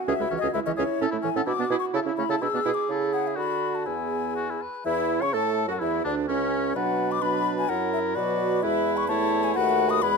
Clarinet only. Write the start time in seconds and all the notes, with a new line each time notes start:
0.08 C#4
0.20 G#3
0.31 E3
0.43 C#4
0.55 G#3
0.67 E3
0.79 C#4
1.01 C#4
1.13 A3
1.24 E3
1.36 C#4
1.47 D4
1.59 B3
1.71 E4
1.93 E4
2.06 C#4
2.18 A3
2.30 E4
2.42 D4
2.54 B3
2.65 E4
2.89 E4
3.37 D4
3.87 B3
4.86 E4
5.21 C#5
5.34 A4
5.68 F#4
5.81 E4
6.05 D4
6.29 C#4
6.76 D4
7.22 D4
7.70 E4
8.16 F#4
8.63 E4
9.10 E4
9.57 F#4
10.04 E4